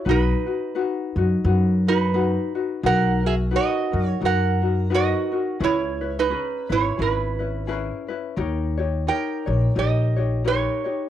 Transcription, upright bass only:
X:1
M:4/4
L:1/8
Q:"Swing" 1/4=87
K:B
V:1 name="Upright bass" clef=bass
B,,, z2 F,, F,,4 | B,,,3 F,, F,,4 | C,,3 G,,, G,,,4 | D,,3 A,,, A,,,4 |]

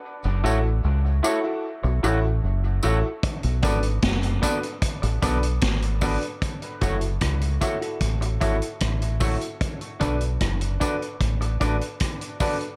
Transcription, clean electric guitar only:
X:1
M:4/4
L:1/8
Q:1/4=75
K:Bdor
V:1 name="Clean electric guitar"
z [A,EFc] z [A,EFc] z [A,EFc] z [A,EFc] | z [B,FAd] z [B,FAd] z [B,FAd] z [B,FAd] | z [A,EFc] z [A,EFc] z [A,EFc] z [A,EFc] | z [DFAd] z [DFAd] z [DFAd] z [DFAd] |]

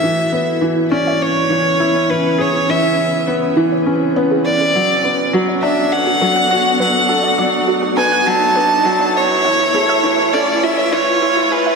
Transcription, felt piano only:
X:1
M:4/4
L:1/8
Q:1/4=102
K:C#phr
V:1 name="Felt piano" clef=bass
E, B, E, C z E, E E, | G E, z B, E, C B, z | F, B, F, D z F, F F, | A F, z B, F, D F, z |
E, A, E, C z E, E E, |]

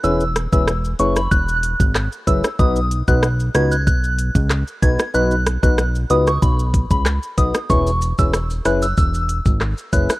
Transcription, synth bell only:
X:1
M:4/4
L:1/16
Q:1/4=94
K:E
V:1 name="Synth bell"
e'2 z e' z2 c' b f'3 z3 e' z | d'2 z f' z2 g' f' f'3 z3 g' z | f'2 z f' z2 d' c' b z2 b z2 d' z | c'2 z e' z2 f' e' e'3 z3 f' z |]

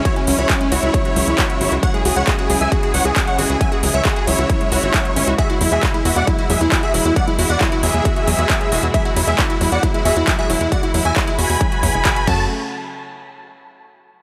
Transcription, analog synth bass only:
X:1
M:4/4
L:1/16
Q:1/4=135
K:Emix
V:1 name="Analog synth bass" clef=bass
z2 C,, C,, z2 C,, C,, z2 C,, C,, z2 G,,, C,, | z2 C,, C,, z2 C,, C,, z2 C,, C,, z2 G,,, C,, | z2 C,, C,, z2 C,, C,, z2 C,, G,,, z2 G,,, C,, | z2 E,, E,, z2 E,, E,, z2 E,, E,, z2 E,,, E,, |
z2 E,, E,, z2 E,, E,, z2 E,, E,, z2 E,,, E,, | z2 E,, E,, z2 E,, E,, z2 E,, E,, z2 E,,, E,, | z2 E,, E,, z2 E,, E,, z2 E,, E,,, z2 F,,2 | z16 |]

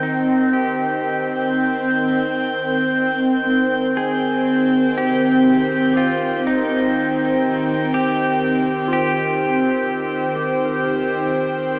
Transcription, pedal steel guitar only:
X:1
M:4/4
L:1/8
Q:1/4=61
K:Cm
V:1 name="Pedal steel guitar"
E G2 z4 z | A2 G2 F E3 | G2 G4- G z |]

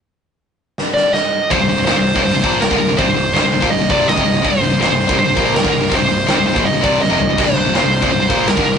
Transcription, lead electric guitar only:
X:1
M:4/4
L:1/8
Q:1/4=164
K:Cm
V:1 name="Lead electric guitar"
z4 z d e2 | c2 c2 c2 B2 | c2 c2 e d e2 | c2 c2 c2 B2 |
c2 c2 e d e2 | c2 c2 c2 B2 |]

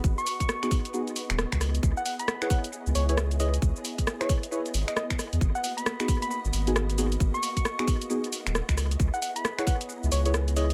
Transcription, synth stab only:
X:1
M:4/4
L:1/16
Q:"Swing 16ths" 1/4=134
K:G#m
V:1 name="Synth stab"
z4 z [B,DFG] z2 [B,DFG] z6 z | z4 z [EGBc] z4 z [EGBc] z2 [EGBc] z | z4 z [EGBc] z2 [EGBc] z6 z | z4 z [B,DFG] z4 z [B,DFG] z2 [B,DFG] z |
z4 z [B,DFG] z2 [B,DFG] z6 z | z4 z [EGBc] z4 z [EGBc] z2 [EGBc] z |]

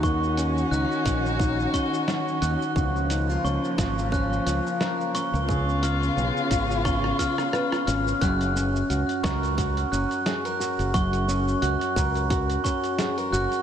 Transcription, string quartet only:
X:1
M:4/4
L:1/8
Q:"Swing 16ths" 1/4=88
K:F#
V:1 name="String quartet"
[D,CF]8 | [E,A,]8 | [C,B,E]8 | z8 |
z8 |]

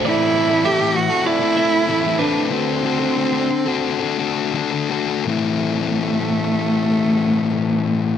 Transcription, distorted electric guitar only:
X:1
M:4/4
L:1/16
Q:1/4=88
K:Ador
V:1 name="Distorted electric guitar"
[A,,E,A,CEA]2 [A,CEA] [A,CEA] [A,,E,A,CEA] [A,CEA]2 [A,CEA]2 [A,CEA] [A,CEA]2 [A,,E,A,CEA] [A,CEA] [A,CEA]2 | [D,A,DFA]2 [A,DFA] [DFA] [D,A,DFA] [DFA]2 [DFA]2 [DFA] [A,DFA]2 [D,A,DFA] [DFA] [A,DFA]2 | [A,,E,A,CE]16 |]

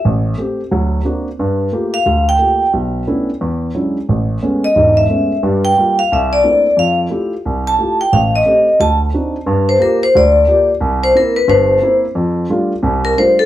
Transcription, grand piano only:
X:1
M:4/4
L:1/8
Q:"Swing" 1/4=178
K:Gdor
V:1 name="Grand piano"
A,,,2 [A,CG] z [D,,^F,]2 [B,CD^F] z | G,,2 [A,B,FG] z D,,2 [A,B,FG] z | =B,,,2 [A,=B,^CDE] z E,,2 [^F,^G,CDE] z | A,,,2 [^G,A,=B,^C] z [E,,,^G,,]2 [G,A,B,C] z |
[G,,G,]2 [G,B,F] z C,,2 [A,B,CDE] z | F,,2 [A,EFG] z C,,2 [A,EFG] z | A,,,2 [A,CG] z D,,2 [CD_E^F] z | G,,2 [B,FG] z D,,2 [B,FG] z |
C,,2 [B,CE] z [G,,,G,,]2 [B,CE] z | F,,2 [G,A,DF] z [C,,C,]2 [G,A,DF] z |]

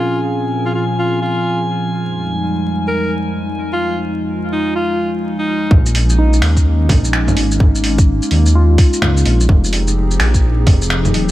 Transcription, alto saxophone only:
X:1
M:4/4
L:1/16
Q:"Swing 16ths" 1/4=127
K:Bbdor
V:1 name="Alto saxophone"
F z4 F F z F2 F3 z3 | z8 B2 z4 z F- | F z4 z E2 F3 z2 E3 | z16 |
z16 | z16 |]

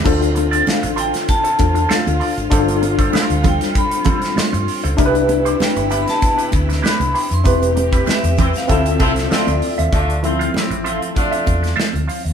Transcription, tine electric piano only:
X:1
M:4/4
L:1/8
Q:"Swing 16ths" 1/4=97
K:Ddor
V:1 name="Tine electric piano"
[DFAc]4- [DFAc] [DFAc]3 | [DFAc]8 | [DEG_B=B]8 | [CEGB]4 [CEFA]4 |
z [F,CE] z6 |]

